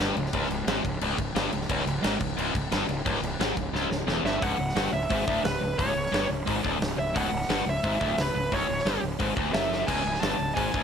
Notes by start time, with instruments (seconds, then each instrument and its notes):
0.00 fingered electric bass G1, distorted electric guitar G2
0.16 fingered electric bass C#1, distorted electric guitar C#2, crash
0.26 snare
0.33 fingered electric bass C#1, distorted electric guitar C#2, kick, crash
0.42 snare
0.50 fingered electric bass C#1, distorted electric guitar C#2, crash
0.67 fingered electric bass G#1, distorted electric guitar G#2, snare, crash
0.85 fingered electric bass C#1, distorted electric guitar C#2, kick, crash
1.01 fingered electric bass C#1, distorted electric guitar C#2, crash
1.18 fingered electric bass C#1, distorted electric guitar C#2, kick, crash
1.35 fingered electric bass G1, distorted electric guitar G2, snare, crash
1.52 fingered electric bass C#1, distorted electric guitar C#2, crash
1.61 snare
1.69 fingered electric bass C#1, distorted electric guitar C#2, kick, crash
1.79 snare
1.86 fingered electric bass C#1, distorted electric guitar C#2, crash
2.03 fingered electric bass G#1, distorted electric guitar G#2, snare, crash
2.20 fingered electric bass C#1, distorted electric guitar C#2, kick, crash
2.37 fingered electric bass C#1, distorted electric guitar C#2, crash
2.55 fingered electric bass C#1, distorted electric guitar C#2, kick, crash
2.72 fingered electric bass G1, distorted electric guitar G2, snare, crash
2.88 fingered electric bass C#1, distorted electric guitar C#2, crash
3.05 fingered electric bass C#1, distorted electric guitar C#2, kick, crash
3.16 snare
3.22 fingered electric bass C#1, distorted electric guitar C#2, crash
3.40 fingered electric bass G#1, distorted electric guitar G#2, snare, crash
3.57 fingered electric bass C#1, distorted electric guitar C#2, kick, crash
3.73 fingered electric bass C#1, distorted electric guitar C#2, snare
3.90 fingered electric bass C#1, distorted electric guitar C#2, snare
4.07 fingered electric bass E1, distorted electric guitar E2, snare
4.24 fingered electric bass G1, distorted electric guitar G2, lead electric guitar E5, snare
4.41 fingered electric bass C#1, distorted electric guitar C#2, lead electric guitar F#5, kick, open hi-hat
4.59 fingered electric bass C#1, distorted electric guitar C#2
4.69 snare
4.76 fingered electric bass G1, distorted electric guitar G2, snare, open hi-hat
4.93 fingered electric bass C#1, distorted electric guitar C#2, lead electric guitar E5
5.09 fingered electric bass G#1, distorted electric guitar G#2, kick, open hi-hat
5.27 fingered electric bass D1, distorted electric guitar D2, kick
5.44 fingered electric bass C#1, distorted electric guitar C#2, lead electric guitar B4, snare, open hi-hat
5.61 fingered electric bass C#1, distorted electric guitar C#2
5.78 fingered electric bass C#1, distorted electric guitar C#2, lead electric guitar C#5, kick, open hi-hat
5.95 fingered electric bass C#1, distorted electric guitar C#2
6.06 snare
6.12 fingered electric bass G1, distorted electric guitar G2, snare, open hi-hat
6.29 fingered electric bass C#1, distorted electric guitar C#2
6.46 fingered electric bass G#1, distorted electric guitar G#2, kick, open hi-hat
6.63 fingered electric bass D1, distorted electric guitar D2, kick
6.80 fingered electric bass C#1, distorted electric guitar C#2, snare, open hi-hat
6.97 fingered electric bass C#1, distorted electric guitar C#2, lead electric guitar E5
7.14 fingered electric bass C#1, distorted electric guitar C#2, lead electric guitar F#5, kick, open hi-hat
7.32 fingered electric bass C#1, distorted electric guitar C#2
7.42 snare
7.49 fingered electric bass G1, distorted electric guitar G2, snare, open hi-hat
7.66 fingered electric bass C#1, distorted electric guitar C#2, lead electric guitar E5
7.83 fingered electric bass G#1, distorted electric guitar G#2, kick, open hi-hat
8.00 fingered electric bass D1, distorted electric guitar D2, kick
8.18 fingered electric bass C#1, distorted electric guitar C#2, lead electric guitar B4, snare, open hi-hat
8.35 fingered electric bass C#1, distorted electric guitar C#2
8.52 fingered electric bass C#1, distorted electric guitar C#2, lead electric guitar C#5, kick, open hi-hat
8.69 fingered electric bass C#1, distorted electric guitar C#2
8.78 snare
8.85 fingered electric bass G1, distorted electric guitar G2, snare, open hi-hat
9.02 fingered electric bass C#1, distorted electric guitar C#2
9.19 fingered electric bass G#1, distorted electric guitar G#2, kick, open hi-hat
9.36 fingered electric bass D1, distorted electric guitar D2, kick
9.53 fingered electric bass F#1, distorted electric guitar F#2, lead electric guitar E5, snare, open hi-hat
9.72 snare
9.87 fingered electric bass C#1, distorted electric guitar C#2, lead electric guitar G#5, kick, splash, crash
10.05 fingered electric bass C#1, distorted electric guitar C#2
10.15 snare
10.21 fingered electric bass G1, distorted electric guitar G2, lead electric guitar A5, snare, open hi-hat
10.39 fingered electric bass C#1, distorted electric guitar C#2
10.55 fingered electric bass G#1, distorted electric guitar G#2, lead electric guitar G#5, kick, open hi-hat
10.74 fingered electric bass D1, distorted electric guitar D2, kick